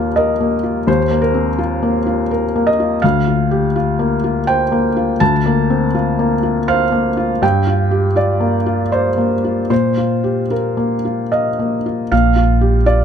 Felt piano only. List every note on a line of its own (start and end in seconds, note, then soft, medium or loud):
0.00 0.83 D#2 soft
0.00 0.40 A#3 soft
0.00 0.64 F4 soft
0.00 0.89 G4 soft
0.00 0.13 F5 soft
0.16 0.55 A#4 soft
0.16 0.83 D#5 soft
0.40 0.78 A#3 soft
0.64 1.01 F4 soft
0.87 2.99 D#2 soft
0.87 1.20 C5 medium
1.11 1.49 A#3 soft
1.22 2.29 A#4 soft
1.34 1.58 C4 soft
1.58 1.97 F4 soft
1.83 2.21 A#3 soft
2.06 2.45 F4 soft
2.31 2.70 A#4 soft
2.56 2.94 A#3 soft
2.67 3.00 D#5 medium
2.80 3.03 F4 soft
3.02 5.17 D2 soft
3.02 4.43 F5 medium
3.28 3.65 F4 soft
3.51 3.75 G4 soft
3.76 4.14 F4 soft
3.99 4.38 A#3 soft
4.24 4.62 F4 soft
4.47 4.86 C5 soft
4.47 5.16 G5 medium
4.72 5.11 A#3 soft
4.97 5.35 F4 soft
5.20 7.39 D2 soft
5.20 6.64 A5 medium
5.46 5.85 A#3 soft
5.70 5.94 C4 soft
5.95 6.34 F4 soft
6.19 6.58 A#3 soft
6.43 6.83 F4 soft
6.68 7.08 C5 soft
6.68 7.38 F5 medium
6.92 7.32 A#3 soft
7.17 7.42 F4 soft
7.42 9.66 G2 soft
7.42 8.12 G5 medium
7.67 8.06 F4 soft
7.91 8.16 G4 soft
8.16 8.56 F4 soft
8.16 8.88 D5 medium
8.40 8.81 A#3 soft
8.66 9.07 F4 soft
8.92 9.67 C5 soft
8.92 9.33 D5 soft
9.18 9.60 A#3 soft
9.44 9.71 F4 soft
9.70 12.08 A#2 soft
9.70 10.47 C5 soft
9.97 10.40 F4 soft
10.24 10.51 G4 soft
10.50 10.94 F4 soft
10.50 11.29 A#4 soft
10.77 11.21 A#3 soft
11.05 11.48 F4 soft
11.32 12.07 D#5 soft
11.32 11.75 F5 soft
11.59 12.02 A#3 soft
11.86 12.12 F4 soft
12.12 13.04 A#2 soft
12.12 12.82 F5 medium
12.36 12.76 F4 soft
12.61 12.86 G4 soft
12.86 13.04 F4 soft
12.86 13.04 D5 medium